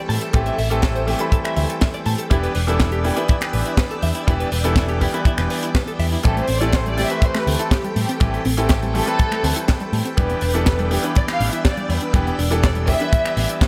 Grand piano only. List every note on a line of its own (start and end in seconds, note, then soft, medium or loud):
0.00 0.30 E3 medium
0.00 0.31 G3 medium
0.00 0.31 A3 medium
0.00 0.31 C4 medium
0.00 0.31 B5 medium
0.33 0.53 E3 medium
0.33 0.53 G3 medium
0.33 0.53 A3 medium
0.33 0.53 C4 medium
0.33 0.53 G4 loud
0.70 1.04 E3 medium
0.70 1.05 G3 medium
0.70 1.05 A3 medium
0.70 1.05 C4 medium
0.70 1.05 A4 medium
1.07 1.17 E3 medium
1.07 1.17 G3 medium
1.07 1.17 A3 medium
1.07 1.17 C4 medium
1.07 1.17 G4 medium
1.19 2.27 E3 medium
1.19 2.27 G3 medium
1.19 2.28 A3 medium
1.19 2.28 C4 medium
1.19 2.28 B5 medium
2.30 2.49 E3 medium
2.30 2.49 G3 medium
2.30 2.50 B3 medium
2.30 2.50 D4 medium
2.30 2.50 G4 loud
2.67 3.01 E3 medium
2.67 3.01 G3 medium
2.67 3.01 B3 medium
2.67 3.02 D4 medium
2.67 3.02 A4 medium
3.04 3.14 E3 medium
3.04 3.14 G3 medium
3.04 3.14 B3 medium
3.04 3.14 D4 medium
3.04 3.14 G4 medium
3.16 4.24 E3 medium
3.16 4.24 G3 medium
3.16 4.25 B3 medium
3.16 4.25 D4 medium
3.16 4.25 B4 medium
4.27 4.46 E3 medium
4.27 4.46 G3 medium
4.27 4.46 B3 medium
4.27 4.47 D4 medium
4.27 4.47 G4 loud
4.64 4.98 E3 medium
4.64 4.98 G3 medium
4.64 4.98 B3 medium
4.64 4.98 D4 medium
4.64 4.98 A4 medium
5.01 5.10 E3 medium
5.01 5.11 G3 medium
5.01 5.11 B3 medium
5.01 5.11 D4 medium
5.01 5.11 G4 medium
5.13 6.21 E3 medium
5.13 6.21 G3 medium
5.13 6.21 B3 medium
5.13 6.21 D4 medium
5.13 6.22 B4 medium
6.23 6.43 E3 medium
6.23 6.43 G3 medium
6.23 6.43 A3 medium
6.23 6.43 C4 medium
6.23 6.43 G4 loud
6.61 6.95 E3 medium
6.61 6.95 G3 medium
6.61 6.95 A3 medium
6.61 6.95 C4 medium
6.61 6.95 A4 medium
6.97 7.07 E3 medium
6.97 7.07 G3 medium
6.97 7.07 A3 medium
6.97 7.07 C4 medium
6.97 7.07 G4 medium
7.09 8.17 E3 medium
7.09 8.18 G3 medium
7.09 8.18 A3 medium
7.09 8.18 C4 medium
7.09 8.18 B4 medium
8.20 8.39 E3 medium
8.20 8.40 G3 medium
8.20 8.40 A3 medium
8.20 8.40 C4 medium
8.20 8.40 G4 loud
8.57 8.91 E3 medium
8.57 8.91 G3 medium
8.57 8.92 A3 medium
8.57 8.92 C4 medium
8.57 8.92 A4 medium
8.94 9.04 E3 medium
8.94 9.04 G3 medium
8.94 9.04 A3 medium
8.94 9.04 C4 medium
8.94 9.04 G4 medium
9.06 10.14 E3 medium
9.06 10.14 G3 medium
9.06 10.15 A3 medium
9.06 10.15 C4 medium
9.06 10.15 B4 medium
10.17 10.36 E3 medium
10.17 10.36 G3 medium
10.17 10.36 B3 medium
10.17 10.37 D4 medium
10.17 10.37 G4 loud
10.54 10.88 E3 medium
10.54 10.88 G3 medium
10.54 10.88 B3 medium
10.54 10.88 D4 medium
10.54 10.89 A4 medium
10.91 11.00 E3 medium
10.91 11.01 G3 medium
10.91 11.01 B3 medium
10.91 11.01 D4 medium
10.91 11.01 G4 medium
11.03 12.11 E3 medium
11.03 12.11 G3 medium
11.03 12.11 B3 medium
11.03 12.12 D4 medium
11.03 12.12 B4 medium
12.13 12.33 E3 medium
12.13 12.33 G3 medium
12.13 12.33 B3 medium
12.13 12.33 D4 medium
12.13 12.33 G4 loud
12.51 12.85 E3 medium
12.51 12.85 G3 medium
12.51 12.85 B3 medium
12.51 12.85 D4 medium
12.51 12.85 A4 medium
12.87 12.97 E3 medium
12.87 12.97 G3 medium
12.87 12.98 B3 medium
12.87 12.98 D4 medium
12.87 12.98 G4 medium
12.99 13.68 E3 medium
12.99 13.68 G3 medium
12.99 13.68 B3 medium
12.99 13.68 D4 medium
12.99 13.68 B4 medium